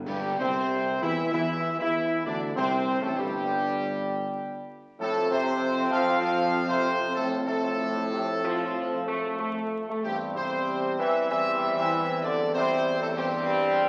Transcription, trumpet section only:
0.06 0.37 G4 loud
0.40 0.99 C5 loud
1.03 1.31 E5 loud
1.33 1.77 E5 loud
1.79 2.22 E5 loud
2.26 2.40 D5 loud
2.57 2.99 C5 loud
3.02 3.17 A4 loud
3.17 4.69 G4 loud
5.00 5.29 A4 loud
5.32 5.88 C5 loud
5.92 6.21 F5 loud
6.22 6.66 F5 loud
6.69 7.12 C5 loud
7.15 7.30 A4 loud
7.47 9.66 A4 loud
10.04 10.18 G4 loud
10.36 10.95 C5 loud
11.00 11.28 E5 loud
11.30 11.74 E5 loud
11.77 12.20 E5 loud
12.23 12.54 D5 loud
12.54 12.98 C5 loud
13.01 13.08 A4 loud
13.16 13.89 G4 loud

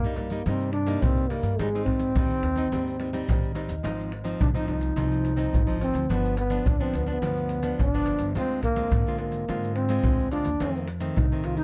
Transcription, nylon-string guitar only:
0.00 0.44 G2 soft
0.04 0.28 G3 medium
0.04 0.28 A#3 soft
0.04 0.29 D#4 medium
0.31 0.42 G3 medium
0.31 0.42 A#3 medium
0.31 0.42 D#4 medium
0.47 1.00 C3 soft
0.47 0.73 G3 soft
0.47 0.74 A#3 medium
0.47 0.74 D#4 soft
0.87 1.26 G3 medium
0.87 1.26 A#3 medium
0.87 1.26 D#4 medium
1.04 1.57 G2 soft
1.31 1.54 G3 soft
1.31 1.55 A#3 soft
1.31 1.55 D#4 soft
1.60 2.13 G#2 medium
1.60 1.68 G3 soft
1.60 1.68 C4 medium
1.60 1.68 D#4 medium
1.75 2.12 G3 medium
1.75 2.12 C4 medium
1.75 2.12 D#4 soft
2.17 2.70 D#3 soft
2.17 2.43 G3 medium
2.17 2.43 C4 medium
2.17 2.43 D#4 medium
2.57 2.67 G3 medium
2.57 2.67 C4 medium
2.57 2.68 D#4 medium
2.73 3.26 G#2 soft
2.73 2.96 G3 soft
2.73 2.96 C4 soft
2.73 2.96 D#4 soft
3.00 3.10 G3 soft
3.00 3.10 C4 soft
3.00 3.10 D#4 soft
3.13 3.52 G3 medium
3.13 3.52 C4 medium
3.13 3.52 D#4 medium
3.29 3.82 D#3 medium
3.55 3.74 G3 medium
3.55 3.74 C4 soft
3.55 3.74 D#4 medium
3.83 4.38 G#2 medium
3.83 4.10 F3 soft
3.83 4.11 C4 soft
3.83 4.11 D#4 medium
4.24 4.49 F3 medium
4.24 4.49 C4 soft
4.24 4.50 D#4 medium
4.40 4.94 G#2 soft
4.54 4.92 F3 medium
4.54 4.93 C4 medium
4.54 4.93 D#4 medium
4.96 5.50 G#2 medium
4.96 5.35 F3 medium
4.96 5.35 C4 medium
4.96 5.35 D#4 medium
5.36 5.62 F3 medium
5.36 5.62 C4 medium
5.36 5.62 D#4 medium
5.53 6.07 G#2 medium
5.67 6.05 F3 medium
5.67 6.05 C4 medium
5.67 6.05 D#4 medium
6.09 6.63 G2 soft
6.09 6.36 F3 medium
6.09 6.37 B3 soft
6.09 6.37 D4 medium
6.50 6.75 F3 medium
6.50 6.75 B3 medium
6.50 6.75 D4 medium
6.65 7.19 D3 medium
6.80 7.04 F3 medium
6.80 7.04 B3 medium
6.80 7.04 D4 medium
7.07 7.17 F3 medium
7.07 7.18 B3 medium
7.07 7.18 D4 medium
7.22 7.76 G2 soft
7.22 7.60 F3 soft
7.22 7.60 B3 medium
7.22 7.61 D4 medium
7.63 7.88 F3 medium
7.63 7.88 B3 medium
7.63 7.88 D4 medium
7.79 8.33 D3 medium
7.94 8.31 F3 medium
7.94 8.31 B3 medium
7.94 8.32 D4 medium
8.36 8.89 D3 medium
8.36 8.62 G#3 soft
8.36 8.62 C4 medium
8.36 8.63 F4 medium
8.76 9.01 G#3 medium
8.76 9.01 C4 medium
8.76 9.01 F4 medium
8.93 9.46 D3 soft
9.07 9.44 G#3 soft
9.07 9.45 C4 soft
9.07 9.45 F4 medium
9.49 10.02 D3 medium
9.49 9.86 G#3 soft
9.49 9.86 C4 medium
9.49 9.87 F4 medium
9.90 10.28 G#3 medium
9.90 10.28 C4 medium
9.90 10.28 F4 medium
10.05 10.58 D3 medium
10.32 10.49 G#3 soft
10.32 10.49 C4 soft
10.32 10.49 F4 medium
10.61 11.14 F2 medium
10.61 10.87 D#3 medium
10.61 10.87 A3 soft
10.61 10.88 C4 medium
11.01 11.25 D#3 medium
11.01 11.26 A3 medium
11.01 11.26 C4 medium
11.17 11.64 C3 soft
11.32 11.64 D#3 medium
11.32 11.64 A3 soft
11.32 11.64 C4 medium

